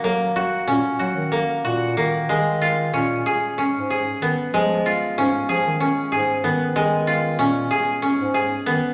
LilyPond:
<<
  \new Staff \with { instrumentName = "Koto" } { \time 7/8 \key des \mixolydian \tempo 4 = 94 bes8 ges'8 des'8 ges'8 bes8 ges'8 bes8 | aes8 f'8 des'8 aes'8 des'8 aes'8 ces'8 | aes8 f'8 des'8 aes'8 des'8 aes'8 ces'8 | aes8 f'8 des'8 aes'8 des'8 aes'8 ces'8 | }
  \new Staff \with { instrumentName = "Bass clarinet" } { \clef bass \time 7/8 \key des \mixolydian ges8 r8 bes,16 r16 ges16 ees8 r16 bes,8 ees8 | ees4 bes,8 r8. aes,8 r16 ees16 r16 | f8 r8 aes,16 r16 f16 ees8 r16 aes,8 ees8 | ees4 bes,8 r8. aes,8 r16 ees16 r16 | }
>>